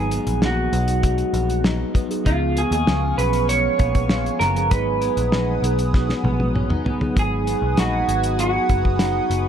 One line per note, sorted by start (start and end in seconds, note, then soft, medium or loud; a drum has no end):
0.00 0.18 G#1 medium
0.00 2.26 G#2 medium
0.00 0.71 F#3 medium
0.00 1.01 F#3 soft
0.00 0.12 B3 medium
0.00 0.72 B3 medium
0.00 0.41 D#4 medium
0.00 0.73 D#4 medium
0.00 0.74 F#4 medium
0.00 0.39 G#4 medium
0.00 2.11 G#4 medium
0.11 0.72 B3 medium
0.11 closed hi-hat medium
0.27 0.39 A#1 medium
0.27 closed hi-hat medium
0.42 0.67 A#1 medium
0.42 1.63 D#4 medium
0.42 1.62 F#4 medium
0.42 snare loud
0.71 1.22 B1 medium
0.71 1.86 F#3 medium
0.71 1.87 B3 medium
0.71 1.33 B3 medium
0.71 1.87 D#4 medium
0.71 1.88 F#4 medium
0.71 closed hi-hat medium
0.88 closed hi-hat medium
1.03 2.32 F#3 medium
1.03 kick medium
1.03 closed hi-hat medium
1.18 closed hi-hat soft
1.33 1.83 A#1 medium
1.33 1.94 B3 medium
1.33 closed hi-hat medium
1.50 closed hi-hat soft
1.64 2.25 D#4 medium
1.64 snare loud
1.94 2.55 B3 medium
1.94 kick medium
1.94 closed hi-hat medium
2.09 2.24 F#3 medium
2.09 2.24 B3 medium
2.09 2.25 D#4 medium
2.09 2.25 G#4 medium
2.09 closed hi-hat medium
2.24 2.63 C#2 medium
2.24 4.71 C#3 medium
2.24 3.10 F3 medium
2.24 3.11 B3 medium
2.24 4.69 B3 medium
2.24 3.11 C#4 medium
2.24 2.85 F4 medium
2.24 2.58 F4 medium
2.24 3.12 G#4 medium
2.24 4.69 F5 medium
2.24 7.12 G#5 medium
2.24 4.69 C#6 medium
2.24 kick loud
2.24 closed hi-hat medium
2.56 3.16 B3 medium
2.56 2.71 G#4 medium
2.56 closed hi-hat medium
2.71 2.84 D#2 medium
2.71 3.15 G#4 medium
2.71 closed hi-hat medium
2.87 3.12 C#2 medium
2.87 4.08 F4 medium
2.87 snare loud
3.16 3.67 B1 medium
3.16 4.31 F3 medium
3.16 3.78 B3 soft
3.16 4.32 B3 medium
3.16 4.32 C#4 medium
3.16 4.33 G#4 medium
3.16 3.49 B4 medium
3.16 closed hi-hat medium
3.33 closed hi-hat medium
3.47 5.93 G#3 soft
3.47 4.39 C#5 medium
3.47 closed hi-hat medium
3.78 4.28 A#1 medium
3.78 4.40 B3 medium
3.78 kick medium
3.78 closed hi-hat medium
3.95 kick medium
3.95 closed hi-hat medium
4.09 4.71 F4 medium
4.09 snare loud
4.26 closed hi-hat soft
4.39 4.71 F#1 medium
4.39 5.01 B3 medium
4.39 4.71 A#4 loud
4.39 snare soft
4.39 closed hi-hat medium
4.55 4.70 F3 medium
4.55 4.70 B3 medium
4.55 4.71 C#4 medium
4.55 4.71 G#4 medium
4.55 closed hi-hat medium
4.71 5.08 G#1 loud
4.71 7.15 G#2 medium
4.71 5.56 F#3 medium
4.71 5.57 B3 medium
4.71 5.32 D#4 medium
4.71 5.57 D#4 medium
4.71 5.58 G#4 medium
4.71 6.51 B4 medium
4.71 7.14 B4 medium
4.71 7.14 F#5 medium
4.71 7.14 D#6 medium
4.71 kick loud
4.71 closed hi-hat loud
5.02 5.63 B3 medium
5.02 closed hi-hat medium
5.17 5.29 A#1 medium
5.17 closed hi-hat medium
5.32 5.57 A#1 medium
5.32 6.54 D#4 medium
5.32 snare loud
5.62 6.12 B1 medium
5.62 6.77 F#3 medium
5.62 6.77 B3 medium
5.62 6.23 B3 medium
5.62 6.78 D#4 medium
5.62 6.78 G#4 medium
5.62 closed hi-hat medium
5.79 closed hi-hat medium
5.94 9.44 F#3 soft
5.94 kick medium
5.94 snare medium
6.09 snare medium
6.24 6.73 A#1 medium
6.24 6.84 B3 medium
6.24 high tom medium
6.40 high tom medium
6.54 6.69 C#4 medium
6.54 mid tom medium
6.69 7.22 D#4 medium
6.69 mid tom medium
6.84 7.46 B3 medium
6.84 floor tom medium
6.99 7.14 F#3 medium
6.99 7.14 B3 medium
6.99 7.15 D#4 medium
6.99 7.16 G#4 loud
6.99 floor tom medium
7.15 7.53 G#1 medium
7.15 9.48 G#2 medium
7.15 8.30 F#3 medium
7.15 8.30 B3 medium
7.15 8.31 D#4 medium
7.15 8.31 G#4 medium
7.15 9.48 B4 medium
7.15 9.48 F#5 medium
7.15 9.48 G#5 medium
7.15 9.48 D#6 medium
7.15 kick loud
7.15 closed hi-hat medium
7.19 7.78 G#4 loud
7.47 8.07 B3 medium
7.47 closed hi-hat medium
7.62 7.74 B1 medium
7.77 8.02 A#1 medium
7.77 8.37 D#4 medium
7.77 8.39 F#4 medium
7.77 snare loud
7.77 closed hi-hat medium
8.07 8.57 G#1 medium
8.07 8.69 B3 medium
8.07 closed hi-hat medium
8.24 closed hi-hat medium
8.37 9.48 F#3 medium
8.37 9.48 B3 medium
8.37 8.98 D#4 medium
8.37 9.48 D#4 medium
8.37 9.48 F#4 loud
8.37 9.48 G#4 medium
8.37 closed hi-hat medium
8.69 9.19 F#1 medium
8.69 9.29 B3 medium
8.69 kick medium
8.69 closed hi-hat medium
8.85 kick medium
8.99 9.48 D#4 medium
8.99 snare loud
8.99 closed hi-hat medium
9.30 9.48 F#1 medium
9.30 9.48 B3 medium
9.30 closed hi-hat medium